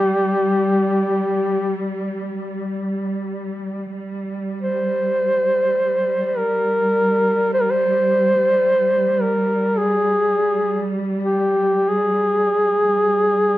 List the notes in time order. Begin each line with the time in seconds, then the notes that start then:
Already playing: G3 G4
3.96 G3
4.62 C5
6.25 C5
6.38 A#4
7.54 C5
7.62 A#4
7.71 C5
9.22 A#4
9.77 G#4
11.24 G4
11.89 G#4